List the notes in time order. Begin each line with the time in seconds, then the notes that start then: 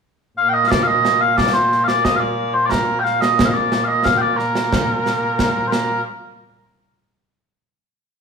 0.37 A#2 A#3 F5
0.49 G5
0.53 D#5
0.67 D5 F5
0.72 concert bass drum, snare
0.83 D#5 F5
1.05 snare
1.21 F5
1.37 D5, concert bass drum, snare
1.54 C5
1.72 snare
1.84 D5 F5
1.88 snare
2.04 D#5, concert bass drum, snare
2.16 D5 F5
2.54 C5
2.66 A#4 D5
2.72 concert bass drum, snare
2.99 G5
3.03 F5, snare
3.21 D#5, snare
3.39 concert bass drum, snare
3.45 D#5 F5
3.54 D5
3.72 snare
3.84 D#5 F5
4.04 F5, concert bass drum, snare
4.17 D5 G5
4.37 A#4, snare
4.55 snare
4.73 concert bass drum, snare
5.06 snare
5.39 concert bass drum, snare
5.67 A#4 C5
5.72 snare